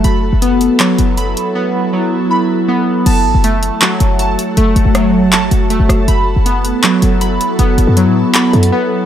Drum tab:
CC |----------------|----------------|x---------------|----------------|
HH |x---x-x-x-x-x-x-|----------------|x---x-x-x-x-x-x-|x-x-x---x-x-x-x-|
CP |--------x-------|----------------|--------x-------|--------x-------|
SD |----------------|----------------|----------------|----r---------r-|

CC |----------------|----------------|
HH |x---x-x-x-x-x-x-|x-x-x---x-xx----|
CP |--------x-------|--------x-------|
SD |----------------|----------------|